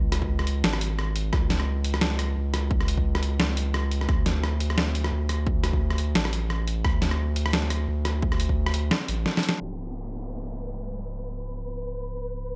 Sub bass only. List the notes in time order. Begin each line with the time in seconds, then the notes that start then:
Already playing: C#2
0.64 G#1
1.33 C#2
2.36 C#2
3.40 C#2
4.09 D2
5.12 D2
6.16 A1
6.85 D2
7.88 D2
9.08 A1
9.60 C#1